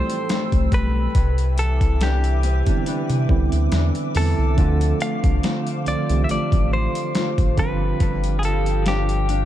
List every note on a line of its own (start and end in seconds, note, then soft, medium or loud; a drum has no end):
0.00 1.15 A2 medium
0.00 1.17 E3 medium
0.00 0.29 G3 medium
0.00 1.16 G3 medium
0.00 0.29 A3 medium
0.00 1.17 A3 medium
0.00 1.16 C4 medium
0.00 0.30 E4 medium
0.00 1.16 E4 medium
0.00 0.71 G4 medium
0.00 1.12 A4 medium
0.00 0.74 C5 loud
0.00 1.12 G5 medium
0.00 1.11 E6 medium
0.10 closed hi-hat medium
0.29 0.72 G3 medium
0.29 1.25 A3 medium
0.29 2.02 E4 medium
0.29 snare loud
0.29 closed hi-hat medium
0.52 0.69 C2 loud
0.52 kick medium
0.52 closed hi-hat soft
0.72 1.08 B1 medium
0.72 1.57 G3 medium
0.72 1.59 B4 loud
0.72 kick medium
0.72 closed hi-hat medium
1.15 2.63 C2 loud
1.15 4.57 C3 medium
1.15 4.54 B4 medium
1.15 4.54 E5 medium
1.15 7.54 D6 medium
1.15 kick loud
1.15 closed hi-hat medium
1.38 closed hi-hat medium
1.58 2.00 E3 medium
1.58 2.03 A4 medium
1.58 closed hi-hat medium
1.81 kick loud
1.81 closed hi-hat medium
2.01 2.85 E3 medium
2.01 2.86 B3 medium
2.01 2.43 D4 medium
2.01 3.69 G4 medium
2.01 snare loud
2.01 closed hi-hat medium
2.24 closed hi-hat medium
2.43 2.67 C4 medium
2.43 closed hi-hat medium
2.66 3.21 D3 medium
2.66 3.21 G3 medium
2.66 3.21 B3 medium
2.66 3.22 C4 medium
2.66 2.86 D4 medium
2.66 3.22 E4 medium
2.66 kick loud
2.66 closed hi-hat medium
2.86 3.71 E3 medium
2.86 3.72 B3 medium
2.86 3.73 D4 medium
2.86 closed hi-hat medium
3.10 3.26 C3 loud
3.10 closed hi-hat medium
3.28 3.48 C2 loud
3.28 4.03 D3 medium
3.28 4.04 G3 medium
3.28 4.04 B3 medium
3.28 4.04 C4 medium
3.28 4.05 E4 loud
3.28 kick loud
3.52 3.69 D2 loud
3.52 closed hi-hat medium
3.72 3.91 E2 medium
3.72 4.14 E3 medium
3.72 4.67 B3 medium
3.72 5.44 D4 medium
3.72 snare loud
3.72 closed hi-hat medium
3.95 closed hi-hat soft
4.14 4.34 E2 medium
4.14 4.52 D3 medium
4.14 4.67 E3 medium
4.14 4.52 G3 medium
4.14 4.52 B3 medium
4.14 4.53 C4 medium
4.14 4.53 E4 medium
4.14 5.01 A4 loud
4.14 open hi-hat medium
4.39 4.59 C2 loud
4.57 4.93 D2 loud
4.57 5.70 D3 loud
4.57 8.08 D3 medium
4.57 5.70 F3 medium
4.57 5.70 A3 medium
4.57 5.71 C4 medium
4.57 5.71 F4 loud
4.57 7.55 C5 medium
4.57 9.45 F5 medium
4.57 kick loud
4.57 closed hi-hat medium
4.81 closed hi-hat medium
5.00 5.42 A3 medium
5.00 5.88 F5 loud
5.00 closed hi-hat medium
5.24 5.40 C2 medium
5.24 kick loud
5.24 closed hi-hat medium
5.43 6.28 A3 medium
5.43 6.29 C4 medium
5.43 5.86 F4 medium
5.43 snare loud
5.43 closed hi-hat medium
5.67 closed hi-hat medium
5.85 5.96 C2 soft
5.85 6.06 D3 medium
5.85 6.06 F3 medium
5.85 6.06 A3 medium
5.85 6.07 C4 medium
5.85 6.30 F4 medium
5.85 6.07 F4 medium
5.85 6.24 D5 loud
5.85 closed hi-hat medium
6.09 6.26 C2 medium
6.09 7.55 D3 medium
6.09 6.15 E3 medium
6.09 7.56 A3 medium
6.09 7.56 C4 medium
6.09 7.57 G4 medium
6.09 closed hi-hat medium
6.16 7.56 F3 medium
6.24 6.30 E5 medium
6.29 6.38 A1 soft
6.29 7.14 A3 medium
6.29 7.15 C4 medium
6.29 7.16 F4 medium
6.29 6.73 D5 loud
6.29 closed hi-hat medium
6.52 6.88 A1 loud
6.52 kick loud
6.52 closed hi-hat medium
6.73 7.59 C5 loud
6.95 closed hi-hat medium
7.15 7.67 A3 medium
7.15 8.87 C4 medium
7.15 8.03 F4 medium
7.15 snare loud
7.15 closed hi-hat medium
7.38 7.55 A1 loud
7.38 kick medium
7.38 closed hi-hat soft
7.57 7.93 G1 loud
7.57 7.99 G2 medium
7.57 9.06 D3 medium
7.57 9.07 F3 medium
7.57 9.07 G3 medium
7.57 9.07 C4 medium
7.57 9.08 F4 medium
7.57 9.45 G4 medium
7.57 8.39 B4 loud
7.57 9.45 G5 medium
7.57 kick loud
7.57 closed hi-hat medium
8.00 9.45 G1 loud
8.00 9.45 G2 medium
8.00 kick loud
8.00 closed hi-hat medium
8.24 closed hi-hat medium
8.39 8.44 G#4 medium
8.39 closed hi-hat medium
8.43 8.86 F3 medium
8.43 8.84 A4 medium
8.66 closed hi-hat medium
8.86 9.45 F3 medium
8.86 9.45 C4 medium
8.86 9.28 D4 medium
8.86 9.45 G4 medium
8.86 snare loud
8.86 closed hi-hat medium
9.09 closed hi-hat medium
9.29 9.45 D4 medium
9.29 closed hi-hat medium